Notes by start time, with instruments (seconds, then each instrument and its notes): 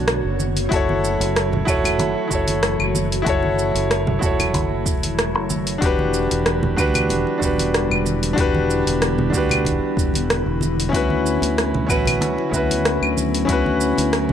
Already playing: fingered electric bass B1, ambient pad D3 A3 B3 F#4 C#5, grand piano D4 F#4 A4 C#5
0.08 cross-stick, open hi-hat, shaker
0.25 fingered electric bass F#1
0.39 ambient pad E3 F#3, high conga, shaker
0.57 open hi-hat, shaker
0.69 fingered electric bass F#1, grand piano E4 F#4, kick, open hi-hat, shaker
0.73 grand piano A4 C#5
0.89 high conga
1.04 shaker
1.20 fingered electric bass F#1, open hi-hat, shaker
1.36 cross-stick, open hi-hat, shaker
1.53 high conga, low conga
1.65 fingered electric bass E1, grand piano E4 F#4 A4, kick, claves, shaker
1.69 grand piano C#5
1.84 open hi-hat, low conga, claves, shaker
1.99 fingered electric bass F#1, open hi-hat, high conga, shaker
2.28 fingered electric bass F#1, grand piano E4 F#4, kick, shaker
2.33 grand piano A4 C#5
2.47 open hi-hat, high conga, shaker
2.63 cross-stick, open hi-hat, shaker
2.80 fingered electric bass F#1, claves
2.94 ambient pad E4, high conga, shaker
3.12 open hi-hat, shaker
3.22 grand piano E4 F#4
3.26 fingered electric bass F#1, grand piano A4 C#5, kick, open hi-hat, shaker
3.43 high conga
3.59 shaker
3.75 fingered electric bass F#1, open hi-hat, shaker
3.91 cross-stick, open hi-hat, shaker
4.07 high conga, low conga
4.19 fingered electric bass E1, grand piano E4 F#4, kick, shaker
4.23 grand piano A4 C#5
4.40 open hi-hat, low conga, claves, shaker
4.54 fingered electric bass F#1, kick, open hi-hat, high conga, shaker
4.86 fingered electric bass E1, kick, shaker
5.03 open hi-hat, high conga, shaker
5.19 cross-stick, open hi-hat, shaker
5.35 fingered electric bass F#1, cross-stick
5.50 high conga, shaker
5.67 open hi-hat, shaker
5.78 fingered electric bass E1, ambient pad G3, grand piano D4 F#4, kick, open hi-hat
5.82 ambient pad D3 B3 E4, grand piano G4 B4, shaker
5.99 high conga
6.14 shaker
6.31 fingered electric bass E1, open hi-hat, muted conga, shaker
6.46 cross-stick, open hi-hat, shaker
6.63 high conga, low conga
6.76 fingered electric bass D2, grand piano D4 F#4 G4 B4, kick, claves, shaker
6.94 open hi-hat, low conga, claves, shaker
7.09 fingered electric bass E1, open hi-hat, high conga, shaker
7.27 muted conga
7.38 fingered electric bass E1, grand piano D4 F#4, kick
7.42 grand piano G4 B4, shaker
7.58 open hi-hat, high conga, shaker
7.74 cross-stick, open hi-hat, shaker
7.90 fingered electric bass E1, claves
8.06 high conga, shaker
8.23 open hi-hat, shaker
8.33 fingered electric bass E1, grand piano D4 F#4, kick
8.38 grand piano G4 B4, open hi-hat, shaker
8.55 high conga
8.70 shaker
8.87 fingered electric bass E1, open hi-hat, muted conga, shaker
9.02 cross-stick, open hi-hat, shaker
9.18 high conga, low conga
9.30 fingered electric bass D2, grand piano D4 F#4, kick
9.34 grand piano G4 B4, shaker
9.49 open hi-hat, low conga, claves, shaker
9.65 fingered electric bass E1, kick, open hi-hat, high conga, shaker
9.97 fingered electric bass E1, kick, shaker
10.14 open hi-hat, muted conga, high conga, shaker
10.30 cross-stick, open hi-hat, shaker
10.46 fingered electric bass E1
10.61 muted conga, high conga, shaker
10.80 open hi-hat, shaker
10.89 fingered electric bass D2, ambient pad F#3 B3 C#5, grand piano C#4 E4, kick
10.94 grand piano F#4 B4, open hi-hat, shaker
11.10 high conga
11.26 shaker
11.42 fingered electric bass D2, open hi-hat, muted conga, shaker
11.58 cross-stick, open hi-hat, shaker
11.74 high conga, low conga
11.87 fingered electric bass A1, grand piano C#4 E4 F#4 B4, kick, claves, shaker
12.06 open hi-hat, low conga, claves, shaker
12.21 fingered electric bass D2, open hi-hat, high conga, shaker
12.38 muted conga
12.49 fingered electric bass D2, grand piano C#4 E4, kick
12.54 grand piano F#4 B4, shaker
12.70 open hi-hat, high conga, shaker
12.85 cross-stick, open hi-hat, shaker
13.02 fingered electric bass D2, claves
13.17 high conga, shaker
13.35 open hi-hat, shaker
13.45 fingered electric bass D2, grand piano C#4 E4, kick, open hi-hat
13.49 grand piano F#4 B4, shaker
13.66 high conga
13.81 shaker
13.98 fingered electric bass D2, open hi-hat, muted conga, shaker
14.13 cross-stick, open hi-hat, shaker
14.29 high conga, low conga